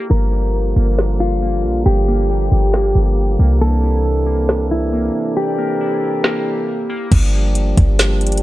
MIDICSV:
0, 0, Header, 1, 6, 480
1, 0, Start_track
1, 0, Tempo, 437956
1, 118, Time_signature, 4, 2, 24, 8
1, 9235, End_track
2, 0, Start_track
2, 0, Title_t, "Clean electric guitar"
2, 0, Program_c, 0, 27
2, 116, Note_on_c, 0, 70, 100
2, 1274, Note_off_c, 0, 70, 0
2, 1317, Note_on_c, 0, 65, 86
2, 1995, Note_off_c, 0, 65, 0
2, 2036, Note_on_c, 0, 67, 98
2, 3914, Note_off_c, 0, 67, 0
2, 3961, Note_on_c, 0, 69, 98
2, 5116, Note_off_c, 0, 69, 0
2, 5165, Note_on_c, 0, 64, 76
2, 5839, Note_off_c, 0, 64, 0
2, 5882, Note_on_c, 0, 67, 104
2, 7757, Note_off_c, 0, 67, 0
2, 9235, End_track
3, 0, Start_track
3, 0, Title_t, "French horn section"
3, 0, Program_c, 1, 60
3, 117, Note_on_c, 1, 50, 76
3, 117, Note_on_c, 1, 53, 68
3, 117, Note_on_c, 1, 55, 68
3, 118, Note_on_c, 1, 58, 68
3, 118, Note_on_c, 1, 65, 80
3, 2019, Note_off_c, 1, 65, 0
3, 2034, Note_on_c, 1, 67, 82
3, 3919, Note_off_c, 1, 50, 0
3, 3919, Note_off_c, 1, 55, 0
3, 3920, Note_off_c, 1, 53, 0
3, 3937, Note_off_c, 1, 67, 0
3, 3954, Note_on_c, 1, 52, 72
3, 3956, Note_on_c, 1, 48, 75
3, 3956, Note_on_c, 1, 62, 80
3, 3956, Note_on_c, 1, 69, 69
3, 7611, Note_off_c, 1, 48, 0
3, 7611, Note_off_c, 1, 52, 0
3, 7611, Note_off_c, 1, 58, 0
3, 7611, Note_off_c, 1, 62, 0
3, 7611, Note_off_c, 1, 69, 0
3, 7797, Note_on_c, 1, 58, 73
3, 7797, Note_on_c, 1, 67, 81
3, 7798, Note_on_c, 1, 53, 78
3, 7798, Note_on_c, 1, 55, 70
3, 7798, Note_on_c, 1, 62, 71
3, 9235, Note_off_c, 1, 53, 0
3, 9235, Note_off_c, 1, 55, 0
3, 9235, Note_off_c, 1, 58, 0
3, 9235, Note_off_c, 1, 62, 0
3, 9235, Note_off_c, 1, 67, 0
3, 9235, End_track
4, 0, Start_track
4, 0, Title_t, "Synth keys"
4, 0, Program_c, 2, 88
4, 0, Note_on_c, 2, 64, 75
4, 119, Note_on_c, 2, 58, 80
4, 122, Note_off_c, 2, 64, 0
4, 358, Note_on_c, 2, 67, 72
4, 822, Note_off_c, 2, 58, 0
4, 835, Note_on_c, 2, 58, 84
4, 1547, Note_off_c, 2, 58, 0
4, 1560, Note_on_c, 2, 58, 78
4, 1798, Note_off_c, 2, 67, 0
4, 2040, Note_on_c, 2, 79, 82
4, 2269, Note_off_c, 2, 58, 0
4, 2282, Note_on_c, 2, 58, 85
4, 2518, Note_on_c, 2, 67, 72
4, 2984, Note_off_c, 2, 58, 0
4, 2997, Note_on_c, 2, 58, 82
4, 3479, Note_off_c, 2, 79, 0
4, 3708, Note_off_c, 2, 58, 0
4, 3721, Note_on_c, 2, 58, 79
4, 3951, Note_off_c, 2, 58, 0
4, 3958, Note_off_c, 2, 67, 0
4, 3964, Note_on_c, 2, 58, 78
4, 4200, Note_on_c, 2, 64, 75
4, 4660, Note_off_c, 2, 58, 0
4, 4673, Note_on_c, 2, 58, 81
4, 5388, Note_off_c, 2, 58, 0
4, 5402, Note_on_c, 2, 58, 90
4, 5639, Note_off_c, 2, 64, 0
4, 5883, Note_on_c, 2, 74, 80
4, 6107, Note_off_c, 2, 58, 0
4, 6120, Note_on_c, 2, 58, 88
4, 6365, Note_on_c, 2, 64, 71
4, 6825, Note_off_c, 2, 58, 0
4, 6838, Note_on_c, 2, 58, 83
4, 7321, Note_off_c, 2, 74, 0
4, 7545, Note_off_c, 2, 58, 0
4, 7558, Note_on_c, 2, 58, 78
4, 7798, Note_off_c, 2, 58, 0
4, 7802, Note_off_c, 2, 64, 0
4, 9235, End_track
5, 0, Start_track
5, 0, Title_t, "808-style bass"
5, 0, Program_c, 3, 38
5, 118, Note_on_c, 3, 31, 112
5, 809, Note_off_c, 3, 31, 0
5, 837, Note_on_c, 3, 31, 104
5, 1798, Note_on_c, 3, 34, 98
5, 1815, Note_off_c, 3, 31, 0
5, 2026, Note_off_c, 3, 34, 0
5, 2039, Note_on_c, 3, 31, 103
5, 2730, Note_off_c, 3, 31, 0
5, 2758, Note_on_c, 3, 31, 100
5, 3219, Note_off_c, 3, 31, 0
5, 3237, Note_on_c, 3, 31, 104
5, 3699, Note_off_c, 3, 31, 0
5, 3718, Note_on_c, 3, 36, 99
5, 5594, Note_off_c, 3, 36, 0
5, 7799, Note_on_c, 3, 31, 111
5, 8490, Note_off_c, 3, 31, 0
5, 8521, Note_on_c, 3, 31, 106
5, 9235, Note_off_c, 3, 31, 0
5, 9235, End_track
6, 0, Start_track
6, 0, Title_t, "Drums"
6, 1080, Note_on_c, 9, 38, 115
6, 1190, Note_off_c, 9, 38, 0
6, 3000, Note_on_c, 9, 38, 118
6, 3110, Note_off_c, 9, 38, 0
6, 4920, Note_on_c, 9, 38, 117
6, 5030, Note_off_c, 9, 38, 0
6, 6841, Note_on_c, 9, 38, 117
6, 6950, Note_off_c, 9, 38, 0
6, 7799, Note_on_c, 9, 36, 118
6, 7799, Note_on_c, 9, 49, 92
6, 7800, Note_on_c, 9, 42, 77
6, 7909, Note_off_c, 9, 36, 0
6, 7909, Note_off_c, 9, 42, 0
6, 7909, Note_off_c, 9, 49, 0
6, 8278, Note_on_c, 9, 42, 74
6, 8387, Note_off_c, 9, 42, 0
6, 8521, Note_on_c, 9, 36, 89
6, 8521, Note_on_c, 9, 42, 78
6, 8631, Note_off_c, 9, 36, 0
6, 8631, Note_off_c, 9, 42, 0
6, 8758, Note_on_c, 9, 42, 73
6, 8761, Note_on_c, 9, 38, 123
6, 8867, Note_off_c, 9, 42, 0
6, 8871, Note_off_c, 9, 38, 0
6, 8999, Note_on_c, 9, 42, 47
6, 9059, Note_off_c, 9, 42, 0
6, 9059, Note_on_c, 9, 42, 56
6, 9119, Note_off_c, 9, 42, 0
6, 9119, Note_on_c, 9, 42, 68
6, 9179, Note_off_c, 9, 42, 0
6, 9179, Note_on_c, 9, 42, 76
6, 9235, Note_off_c, 9, 42, 0
6, 9235, End_track
0, 0, End_of_file